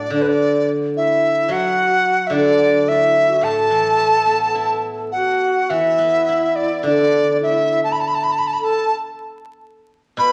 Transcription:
0, 0, Header, 1, 4, 480
1, 0, Start_track
1, 0, Tempo, 551471
1, 1071, Time_signature, 4, 2, 24, 8
1, 3471, Tempo, 573614
1, 5871, Tempo, 554017
1, 8875, End_track
2, 0, Start_track
2, 0, Title_t, "Dizi"
2, 0, Program_c, 0, 73
2, 0, Note_on_c, 0, 74, 72
2, 117, Note_off_c, 0, 74, 0
2, 127, Note_on_c, 0, 74, 70
2, 190, Note_on_c, 0, 71, 56
2, 203, Note_off_c, 0, 74, 0
2, 249, Note_on_c, 0, 74, 76
2, 262, Note_off_c, 0, 71, 0
2, 614, Note_off_c, 0, 74, 0
2, 843, Note_on_c, 0, 76, 81
2, 1323, Note_on_c, 0, 78, 94
2, 1336, Note_off_c, 0, 76, 0
2, 1976, Note_on_c, 0, 76, 61
2, 1989, Note_off_c, 0, 78, 0
2, 2028, Note_on_c, 0, 74, 92
2, 2041, Note_off_c, 0, 76, 0
2, 2510, Note_on_c, 0, 76, 95
2, 2523, Note_off_c, 0, 74, 0
2, 2993, Note_on_c, 0, 81, 102
2, 3006, Note_off_c, 0, 76, 0
2, 4171, Note_off_c, 0, 81, 0
2, 4418, Note_on_c, 0, 78, 74
2, 4905, Note_on_c, 0, 76, 89
2, 4918, Note_off_c, 0, 78, 0
2, 5620, Note_on_c, 0, 74, 76
2, 5632, Note_off_c, 0, 76, 0
2, 5863, Note_off_c, 0, 74, 0
2, 5878, Note_on_c, 0, 74, 88
2, 6322, Note_off_c, 0, 74, 0
2, 6368, Note_on_c, 0, 76, 85
2, 6697, Note_off_c, 0, 76, 0
2, 6723, Note_on_c, 0, 81, 89
2, 6795, Note_on_c, 0, 83, 84
2, 6808, Note_off_c, 0, 81, 0
2, 6865, Note_on_c, 0, 81, 75
2, 6878, Note_off_c, 0, 83, 0
2, 6928, Note_on_c, 0, 83, 80
2, 6941, Note_off_c, 0, 81, 0
2, 6991, Note_on_c, 0, 81, 81
2, 7004, Note_off_c, 0, 83, 0
2, 7065, Note_on_c, 0, 83, 77
2, 7078, Note_off_c, 0, 81, 0
2, 7139, Note_on_c, 0, 81, 78
2, 7152, Note_off_c, 0, 83, 0
2, 7196, Note_on_c, 0, 83, 80
2, 7209, Note_off_c, 0, 81, 0
2, 7271, Note_on_c, 0, 81, 83
2, 7284, Note_off_c, 0, 83, 0
2, 7325, Note_on_c, 0, 83, 74
2, 7338, Note_off_c, 0, 81, 0
2, 7416, Note_on_c, 0, 81, 90
2, 7429, Note_off_c, 0, 83, 0
2, 7683, Note_off_c, 0, 81, 0
2, 8759, Note_on_c, 0, 83, 104
2, 8875, Note_off_c, 0, 83, 0
2, 8875, End_track
3, 0, Start_track
3, 0, Title_t, "Xiao"
3, 0, Program_c, 1, 77
3, 0, Note_on_c, 1, 62, 75
3, 100, Note_off_c, 1, 62, 0
3, 105, Note_on_c, 1, 62, 69
3, 218, Note_off_c, 1, 62, 0
3, 228, Note_on_c, 1, 62, 61
3, 578, Note_off_c, 1, 62, 0
3, 836, Note_on_c, 1, 64, 64
3, 1279, Note_off_c, 1, 64, 0
3, 1299, Note_on_c, 1, 66, 74
3, 2045, Note_on_c, 1, 62, 72
3, 2058, Note_off_c, 1, 66, 0
3, 2521, Note_on_c, 1, 64, 67
3, 2534, Note_off_c, 1, 62, 0
3, 2868, Note_on_c, 1, 66, 75
3, 2882, Note_off_c, 1, 64, 0
3, 3002, Note_on_c, 1, 69, 86
3, 3015, Note_off_c, 1, 66, 0
3, 4435, Note_off_c, 1, 69, 0
3, 4442, Note_on_c, 1, 66, 72
3, 4873, Note_off_c, 1, 66, 0
3, 4873, Note_on_c, 1, 66, 54
3, 4934, Note_on_c, 1, 64, 85
3, 4946, Note_off_c, 1, 66, 0
3, 5873, Note_on_c, 1, 62, 74
3, 5886, Note_off_c, 1, 64, 0
3, 6354, Note_on_c, 1, 64, 63
3, 6367, Note_off_c, 1, 62, 0
3, 6714, Note_off_c, 1, 64, 0
3, 7385, Note_on_c, 1, 69, 94
3, 7648, Note_off_c, 1, 69, 0
3, 8761, Note_on_c, 1, 71, 91
3, 8875, Note_off_c, 1, 71, 0
3, 8875, End_track
4, 0, Start_track
4, 0, Title_t, "Guzheng"
4, 0, Program_c, 2, 107
4, 0, Note_on_c, 2, 45, 56
4, 91, Note_on_c, 2, 50, 62
4, 109, Note_off_c, 2, 45, 0
4, 1292, Note_on_c, 2, 54, 58
4, 1300, Note_off_c, 2, 50, 0
4, 2000, Note_on_c, 2, 50, 65
4, 2744, Note_off_c, 2, 54, 0
4, 2971, Note_on_c, 2, 45, 51
4, 2976, Note_off_c, 2, 50, 0
4, 3223, Note_on_c, 2, 52, 44
4, 3455, Note_on_c, 2, 57, 39
4, 3700, Note_on_c, 2, 59, 37
4, 3940, Note_on_c, 2, 64, 45
4, 4181, Note_off_c, 2, 52, 0
4, 4420, Note_off_c, 2, 45, 0
4, 4422, Note_off_c, 2, 57, 0
4, 4672, Note_off_c, 2, 59, 0
4, 4903, Note_on_c, 2, 52, 53
4, 4914, Note_off_c, 2, 64, 0
4, 5142, Note_on_c, 2, 59, 38
4, 5394, Note_on_c, 2, 64, 44
4, 5850, Note_on_c, 2, 50, 57
4, 6105, Note_off_c, 2, 59, 0
4, 6346, Note_off_c, 2, 52, 0
4, 6351, Note_off_c, 2, 64, 0
4, 7302, Note_off_c, 2, 50, 0
4, 8743, Note_on_c, 2, 47, 61
4, 8875, Note_off_c, 2, 47, 0
4, 8875, End_track
0, 0, End_of_file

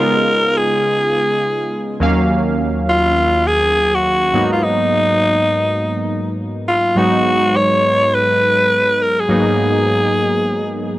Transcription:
0, 0, Header, 1, 3, 480
1, 0, Start_track
1, 0, Tempo, 500000
1, 10548, End_track
2, 0, Start_track
2, 0, Title_t, "Alto saxophone"
2, 0, Program_c, 0, 65
2, 0, Note_on_c, 0, 70, 107
2, 549, Note_on_c, 0, 68, 90
2, 563, Note_off_c, 0, 70, 0
2, 1939, Note_off_c, 0, 68, 0
2, 2777, Note_on_c, 0, 65, 108
2, 3335, Note_on_c, 0, 68, 112
2, 3349, Note_off_c, 0, 65, 0
2, 3788, Note_on_c, 0, 66, 102
2, 3803, Note_off_c, 0, 68, 0
2, 4338, Note_off_c, 0, 66, 0
2, 4343, Note_on_c, 0, 65, 81
2, 4452, Note_on_c, 0, 63, 100
2, 4466, Note_off_c, 0, 65, 0
2, 6127, Note_off_c, 0, 63, 0
2, 6416, Note_on_c, 0, 65, 91
2, 6698, Note_on_c, 0, 66, 109
2, 6713, Note_off_c, 0, 65, 0
2, 7258, Note_on_c, 0, 73, 115
2, 7273, Note_off_c, 0, 66, 0
2, 7821, Note_on_c, 0, 71, 112
2, 7835, Note_off_c, 0, 73, 0
2, 8662, Note_on_c, 0, 70, 97
2, 8676, Note_off_c, 0, 71, 0
2, 8833, Note_on_c, 0, 68, 89
2, 8848, Note_off_c, 0, 70, 0
2, 10548, Note_off_c, 0, 68, 0
2, 10548, End_track
3, 0, Start_track
3, 0, Title_t, "Synth keys"
3, 0, Program_c, 1, 88
3, 0, Control_c, 1, 64, 127
3, 0, Note_on_c, 1, 49, 61
3, 0, Note_on_c, 1, 56, 56
3, 0, Note_on_c, 1, 59, 59
3, 0, Note_on_c, 1, 63, 57
3, 0, Note_on_c, 1, 65, 74
3, 1887, Note_off_c, 1, 49, 0
3, 1889, Note_off_c, 1, 56, 0
3, 1892, Note_off_c, 1, 59, 0
3, 1895, Note_off_c, 1, 63, 0
3, 1897, Note_off_c, 1, 65, 0
3, 1922, Note_on_c, 1, 39, 83
3, 1928, Note_on_c, 1, 54, 72
3, 1933, Note_on_c, 1, 58, 77
3, 1938, Note_on_c, 1, 61, 76
3, 1944, Control_c, 1, 64, 0
3, 1946, Note_on_c, 1, 77, 89
3, 2089, Control_c, 1, 64, 127
3, 4125, Note_off_c, 1, 39, 0
3, 4128, Note_off_c, 1, 54, 0
3, 4130, Note_off_c, 1, 58, 0
3, 4133, Note_off_c, 1, 61, 0
3, 4137, Note_off_c, 1, 77, 0
3, 4160, Note_on_c, 1, 44, 67
3, 4166, Note_on_c, 1, 54, 61
3, 4172, Note_on_c, 1, 58, 61
3, 4177, Note_on_c, 1, 59, 60
3, 4182, Control_c, 1, 64, 0
3, 4184, Note_on_c, 1, 63, 73
3, 4370, Control_c, 1, 64, 127
3, 6363, Note_off_c, 1, 44, 0
3, 6366, Note_off_c, 1, 54, 0
3, 6368, Note_off_c, 1, 58, 0
3, 6371, Note_off_c, 1, 59, 0
3, 6374, Note_off_c, 1, 63, 0
3, 6674, Note_on_c, 1, 44, 62
3, 6680, Note_on_c, 1, 54, 58
3, 6686, Note_on_c, 1, 56, 58
3, 6691, Note_on_c, 1, 59, 60
3, 6697, Note_on_c, 1, 63, 74
3, 6698, Control_c, 1, 64, 0
3, 6838, Control_c, 1, 64, 127
3, 8878, Note_off_c, 1, 44, 0
3, 8881, Note_off_c, 1, 54, 0
3, 8884, Note_off_c, 1, 56, 0
3, 8886, Note_off_c, 1, 59, 0
3, 8889, Note_off_c, 1, 63, 0
3, 8913, Note_on_c, 1, 44, 65
3, 8918, Note_on_c, 1, 54, 61
3, 8923, Note_on_c, 1, 58, 60
3, 8928, Note_on_c, 1, 59, 58
3, 8935, Note_on_c, 1, 63, 71
3, 10548, Note_off_c, 1, 44, 0
3, 10548, Note_off_c, 1, 54, 0
3, 10548, Note_off_c, 1, 58, 0
3, 10548, Note_off_c, 1, 59, 0
3, 10548, Note_off_c, 1, 63, 0
3, 10548, End_track
0, 0, End_of_file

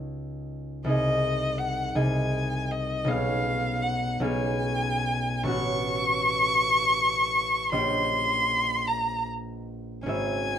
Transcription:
0, 0, Header, 1, 3, 480
1, 0, Start_track
1, 0, Tempo, 744417
1, 562, Time_signature, 6, 3, 24, 8
1, 2477, Tempo, 785340
1, 2957, Tempo, 845070
1, 3437, Tempo, 756620
1, 5357, Tempo, 786370
1, 6631, End_track
2, 0, Start_track
2, 0, Title_t, "Violin"
2, 0, Program_c, 0, 40
2, 554, Note_on_c, 0, 75, 62
2, 1017, Note_on_c, 0, 78, 58
2, 1026, Note_off_c, 0, 75, 0
2, 1265, Note_on_c, 0, 80, 50
2, 1274, Note_off_c, 0, 78, 0
2, 1747, Note_on_c, 0, 75, 57
2, 1756, Note_off_c, 0, 80, 0
2, 1986, Note_on_c, 0, 77, 71
2, 1996, Note_off_c, 0, 75, 0
2, 2468, Note_on_c, 0, 78, 61
2, 2477, Note_off_c, 0, 77, 0
2, 2704, Note_on_c, 0, 80, 59
2, 2713, Note_off_c, 0, 78, 0
2, 3429, Note_off_c, 0, 80, 0
2, 3432, Note_on_c, 0, 85, 87
2, 4842, Note_off_c, 0, 85, 0
2, 4864, Note_on_c, 0, 84, 84
2, 5585, Note_on_c, 0, 82, 64
2, 5594, Note_off_c, 0, 84, 0
2, 5826, Note_off_c, 0, 82, 0
2, 6306, Note_on_c, 0, 80, 74
2, 6631, Note_off_c, 0, 80, 0
2, 6631, End_track
3, 0, Start_track
3, 0, Title_t, "Harp"
3, 0, Program_c, 1, 46
3, 0, Note_on_c, 1, 37, 33
3, 0, Note_on_c, 1, 63, 33
3, 0, Note_on_c, 1, 67, 31
3, 0, Note_on_c, 1, 73, 30
3, 0, Note_on_c, 1, 75, 31
3, 133, Note_off_c, 1, 73, 0
3, 544, Note_on_c, 1, 36, 40
3, 555, Note_off_c, 1, 75, 0
3, 556, Note_off_c, 1, 63, 0
3, 558, Note_on_c, 1, 63, 32
3, 570, Note_on_c, 1, 68, 34
3, 581, Note_off_c, 1, 37, 0
3, 581, Note_off_c, 1, 67, 0
3, 581, Note_on_c, 1, 75, 34
3, 1251, Note_off_c, 1, 36, 0
3, 1251, Note_off_c, 1, 63, 0
3, 1253, Note_off_c, 1, 75, 0
3, 1254, Note_off_c, 1, 68, 0
3, 1257, Note_on_c, 1, 36, 39
3, 1259, Note_on_c, 1, 63, 33
3, 1260, Note_on_c, 1, 68, 34
3, 1263, Note_on_c, 1, 75, 33
3, 1963, Note_on_c, 1, 35, 43
3, 1975, Note_off_c, 1, 68, 0
3, 1975, Note_on_c, 1, 61, 33
3, 1989, Note_on_c, 1, 68, 37
3, 2003, Note_on_c, 1, 77, 37
3, 2005, Note_off_c, 1, 36, 0
3, 2005, Note_off_c, 1, 63, 0
3, 2006, Note_off_c, 1, 75, 0
3, 2692, Note_off_c, 1, 35, 0
3, 2695, Note_on_c, 1, 35, 42
3, 2696, Note_off_c, 1, 61, 0
3, 2698, Note_off_c, 1, 68, 0
3, 2700, Note_off_c, 1, 77, 0
3, 2704, Note_on_c, 1, 61, 37
3, 2707, Note_on_c, 1, 77, 34
3, 2716, Note_on_c, 1, 68, 35
3, 3416, Note_on_c, 1, 33, 44
3, 3424, Note_off_c, 1, 61, 0
3, 3431, Note_on_c, 1, 61, 40
3, 3435, Note_on_c, 1, 66, 36
3, 3449, Note_on_c, 1, 78, 38
3, 3454, Note_off_c, 1, 35, 0
3, 3454, Note_off_c, 1, 68, 0
3, 3454, Note_off_c, 1, 77, 0
3, 4859, Note_off_c, 1, 61, 0
3, 4863, Note_on_c, 1, 34, 41
3, 4865, Note_on_c, 1, 61, 38
3, 4867, Note_on_c, 1, 75, 37
3, 4870, Note_on_c, 1, 67, 40
3, 4887, Note_off_c, 1, 33, 0
3, 4887, Note_off_c, 1, 78, 0
3, 4889, Note_off_c, 1, 66, 0
3, 6289, Note_off_c, 1, 61, 0
3, 6291, Note_on_c, 1, 61, 34
3, 6308, Note_on_c, 1, 68, 33
3, 6312, Note_on_c, 1, 32, 39
3, 6326, Note_off_c, 1, 34, 0
3, 6327, Note_off_c, 1, 75, 0
3, 6327, Note_on_c, 1, 76, 34
3, 6329, Note_off_c, 1, 67, 0
3, 6631, Note_off_c, 1, 32, 0
3, 6631, Note_off_c, 1, 61, 0
3, 6631, Note_off_c, 1, 68, 0
3, 6631, Note_off_c, 1, 76, 0
3, 6631, End_track
0, 0, End_of_file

